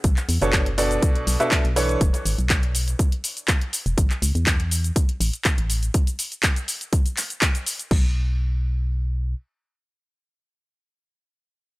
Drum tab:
CC |----------------|----------------|----------------|----------------|
HH |xxoxxxoxxxoxxxox|xxoxxxoxxxoxxxox|xxoxxxoxxxoxxxox|xxoxxxoxxxoxxxox|
SH |xxxxx-xxx-xxx-xx|xxxxx-xxx-xxx-xx|xxxxx-xxx-xxx-xx|xxxxxxxxxxxxxxxx|
CP |-x--x-------x---|----x-------x---|-x--x-------x---|----x-----x-x---|
BD |o---o---o---o---|o---o---o---o---|o---o---o---o---|o---o---o---o---|

CC |x---------------|----------------|
HH |----------------|----------------|
SH |----------------|----------------|
CP |----------------|----------------|
BD |o---------------|----------------|